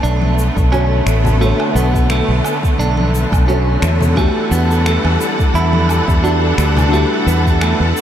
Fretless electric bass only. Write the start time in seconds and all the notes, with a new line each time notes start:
0.03 B1
0.56 B1
1.06 A1
1.75 B1
2.29 B1
2.79 B1
3.32 B1
3.82 E2
4.51 E2
5.04 E2
5.54 E2
6.08 E2
6.58 D2
7.26 E2
7.80 E2